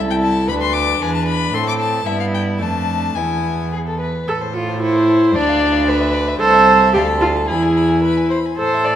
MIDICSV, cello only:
0, 0, Header, 1, 2, 480
1, 0, Start_track
1, 0, Key_signature, 0, "minor"
1, 0, Tempo, 524934
1, 919, Time_signature, 2, 2, 24, 8
1, 1880, Tempo, 556070
1, 3800, Tempo, 538600
1, 7966, End_track
2, 0, Start_track
2, 0, Title_t, "Cello"
2, 0, Program_c, 0, 42
2, 0, Note_on_c, 0, 36, 58
2, 443, Note_on_c, 0, 38, 58
2, 457, Note_off_c, 0, 36, 0
2, 913, Note_off_c, 0, 38, 0
2, 918, Note_on_c, 0, 40, 52
2, 1386, Note_off_c, 0, 40, 0
2, 1398, Note_on_c, 0, 45, 51
2, 1872, Note_off_c, 0, 45, 0
2, 1884, Note_on_c, 0, 43, 52
2, 2352, Note_on_c, 0, 41, 49
2, 2365, Note_off_c, 0, 43, 0
2, 2837, Note_off_c, 0, 41, 0
2, 2841, Note_on_c, 0, 40, 45
2, 3610, Note_off_c, 0, 40, 0
2, 3797, Note_on_c, 0, 45, 54
2, 4756, Note_on_c, 0, 38, 64
2, 4769, Note_off_c, 0, 45, 0
2, 5697, Note_off_c, 0, 38, 0
2, 5702, Note_on_c, 0, 36, 70
2, 6180, Note_on_c, 0, 38, 62
2, 6193, Note_off_c, 0, 36, 0
2, 6668, Note_on_c, 0, 40, 54
2, 6682, Note_off_c, 0, 38, 0
2, 7458, Note_off_c, 0, 40, 0
2, 7640, Note_on_c, 0, 45, 53
2, 7966, Note_off_c, 0, 45, 0
2, 7966, End_track
0, 0, End_of_file